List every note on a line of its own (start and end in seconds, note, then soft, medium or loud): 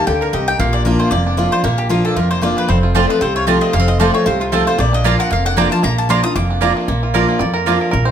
0.00 0.60 A#3 medium
0.00 0.21 A#4 medium
0.07 0.29 D2 medium
0.07 0.32 D3 medium
0.07 0.32 G4 medium
0.07 0.21 G5 medium
0.21 1.61 A#4 medium
0.21 0.33 A#4 medium
0.33 0.56 C2 medium
0.33 0.58 C3 medium
0.33 0.60 G4 medium
0.33 0.47 D#5 medium
0.48 0.60 D#4 medium
0.48 0.59 G5 loud
0.59 0.95 A#1 loud
0.59 1.09 A#2 loud
0.59 0.85 A#3 medium
0.59 0.73 F5 medium
0.73 1.10 D4 medium
0.73 0.85 D5 medium
0.85 1.10 F3 medium
0.85 1.11 A#3 medium
0.85 1.11 D4 loud
0.85 1.11 F4 loud
0.85 0.99 A#4 medium
0.99 1.38 F4 medium
0.99 1.10 C5 medium
1.11 1.47 F1 medium
1.11 1.62 F2 loud
1.11 1.50 A#3 medium
1.11 1.49 D5 loud
1.27 1.62 D4 medium
1.37 1.51 F3 medium
1.37 1.52 A#3 medium
1.37 1.52 D4 medium
1.37 2.16 F4 medium
1.37 1.51 F4 loud
1.52 1.63 A#3 medium
1.52 1.64 D4 medium
1.52 1.63 F4 medium
1.52 1.64 C5 medium
1.64 1.99 A#1 loud
1.64 2.14 A#2 medium
1.64 1.89 A#3 medium
1.64 1.78 A#4 medium
1.78 1.90 G4 medium
1.89 2.15 F3 medium
1.89 2.15 A#3 loud
1.89 2.28 A#3 medium
1.89 2.15 D4 medium
1.89 2.04 F4 medium
1.89 2.16 F4 loud
2.05 2.41 D4 medium
2.05 2.16 A4 medium
2.16 2.52 F1 medium
2.16 2.67 F2 loud
2.16 2.42 F4 medium
2.16 2.30 A#4 medium
2.31 2.66 A#3 medium
2.31 2.42 C5 medium
2.42 2.67 F3 medium
2.42 2.68 A#3 medium
2.42 2.68 D4 medium
2.42 2.83 F4 medium
2.42 2.68 F4 medium
2.42 2.57 D5 medium
2.57 2.69 D4 medium
2.57 2.69 B4 medium
2.68 3.05 F1 loud
2.68 3.19 F2 medium
2.68 2.94 C4 medium
2.68 2.78 C5 medium
2.83 3.10 F4 medium
2.95 3.20 F3 medium
2.95 3.20 A3 medium
2.95 3.05 C4 medium
2.95 3.20 C4 medium
2.95 3.21 C4 medium
2.95 3.05 F4 loud
2.95 3.21 F4 loud
2.95 3.05 C5 loud
2.95 3.09 D5 medium
2.95 3.05 A5 loud
3.10 3.36 F4 medium
3.10 3.21 B4 medium
3.21 3.57 C2 medium
3.21 3.71 C3 loud
3.21 3.59 C4 medium
3.21 3.35 C5 medium
3.36 3.48 F4 medium
3.36 3.47 C#5 medium
3.47 3.72 F3 medium
3.47 3.73 A3 medium
3.47 3.57 C4 medium
3.47 3.73 C4 loud
3.47 3.87 F4 medium
3.47 3.57 F4 medium
3.47 3.73 F4 loud
3.47 3.58 C5 medium
3.47 3.61 D5 medium
3.47 3.58 A5 loud
3.61 3.73 C4 medium
3.61 3.73 D#5 medium
3.73 4.09 F1 loud
3.73 4.24 F2 medium
3.73 3.79 A#3 medium
3.73 3.87 F5 loud
3.79 4.00 C4 medium
3.88 4.00 F4 medium
3.88 3.99 D#5 medium
4.00 4.25 F3 loud
4.00 4.25 A3 loud
4.00 4.10 C4 medium
4.00 4.26 C4 loud
4.00 4.26 F4 medium
4.00 4.10 F4 medium
4.00 4.26 F4 loud
4.00 4.10 C5 loud
4.00 4.14 D5 medium
4.00 4.10 A5 loud
4.14 4.50 C4 medium
4.14 4.26 C#5 medium
4.26 4.62 C2 medium
4.26 4.76 C3 loud
4.26 4.40 F4 medium
4.26 4.41 C5 medium
4.40 4.52 F4 medium
4.52 4.77 F3 medium
4.52 4.78 A3 medium
4.52 4.62 C4 medium
4.52 4.78 C4 medium
4.52 4.67 F4 medium
4.52 4.62 F4 medium
4.52 4.78 F4 medium
4.52 4.66 A4 medium
4.52 4.63 C5 loud
4.52 4.63 A5 medium
4.67 4.93 F4 medium
4.67 4.79 C5 medium
4.78 5.14 A#1 loud
4.78 5.29 A#2 loud
4.78 5.31 A#3 medium
4.78 4.93 D5 medium
4.93 5.45 D4 medium
4.93 5.05 D#5 loud
5.04 5.30 F3 medium
5.04 5.14 A#3 medium
5.04 5.30 A#3 loud
5.04 5.30 D4 loud
5.04 5.15 F4 loud
5.04 5.71 F4 medium
5.04 5.30 F4 medium
5.04 5.15 D5 loud
5.04 5.19 F5 medium
5.04 5.15 A#5 loud
5.19 6.59 A#4 medium
5.19 5.31 F#5 loud
5.31 5.67 F1 medium
5.31 5.81 F2 medium
5.31 5.57 A#3 medium
5.31 5.46 F5 medium
5.45 6.50 D4 medium
5.45 5.57 F#5 loud
5.56 5.71 F3 medium
5.56 5.67 A#3 medium
5.56 5.71 A#3 loud
5.56 5.82 A#3 medium
5.56 5.71 D4 medium
5.56 5.67 F4 medium
5.56 5.70 F4 medium
5.56 5.67 D5 loud
5.56 5.72 G5 loud
5.56 5.67 A#5 loud
5.71 5.84 D4 soft
5.71 5.83 F4 medium
5.71 6.07 F4 medium
5.71 5.83 A5 loud
5.83 6.19 A#1 loud
5.83 6.34 A#2 medium
5.83 6.08 A#3 medium
5.83 5.98 A#5 loud
5.98 6.10 A5 medium
6.09 6.23 F3 medium
6.09 6.34 A#3 medium
6.09 6.20 A#3 medium
6.09 6.24 A#3 medium
6.09 6.24 D4 loud
6.09 6.20 F4 loud
6.09 6.23 F4 loud
6.09 6.20 D5 loud
6.09 6.20 A#5 loud
6.09 6.23 C6 loud
6.24 6.36 D4 soft
6.24 6.35 F4 medium
6.24 6.60 F4 medium
6.24 6.35 D#6 loud
6.36 6.71 F1 medium
6.36 6.86 F2 medium
6.36 6.74 A#3 medium
6.36 6.79 D6 loud
6.50 6.86 D4 medium
6.61 6.87 F3 medium
6.61 6.71 A#3 medium
6.61 6.87 A#3 medium
6.61 6.87 D4 medium
6.61 6.72 F4 medium
6.61 6.88 F4 medium
6.61 6.72 D5 medium
6.61 6.72 A#5 loud
6.77 6.87 A#3 medium
6.88 7.24 A#1 medium
6.88 7.38 A#2 medium
6.88 7.28 A#3 medium
7.03 7.39 F4 medium
7.14 7.39 F3 medium
7.14 7.24 A#3 medium
7.14 7.40 A#3 medium
7.14 7.40 D4 medium
7.14 7.24 F4 medium
7.14 7.40 F4 medium
7.14 7.42 A#4 medium
7.14 7.24 D5 loud
7.14 7.25 A#5 loud
7.29 7.67 A#3 medium
7.39 7.76 F2 medium
7.39 7.91 F2 medium
7.39 7.55 D5 loud
7.54 7.79 A#4 medium
7.66 7.92 F3 medium
7.66 7.76 A#3 medium
7.66 7.92 A#3 medium
7.66 8.08 A#3 medium
7.66 7.93 D4 medium
7.66 7.77 F4 medium
7.66 7.93 F4 loud
7.66 7.77 D5 medium
7.66 7.77 A#5 loud
7.81 7.90 A#4 medium
7.91 8.11 A#1 loud
7.91 8.11 A#2 medium
7.91 8.07 A#4 medium
8.05 8.11 C5 medium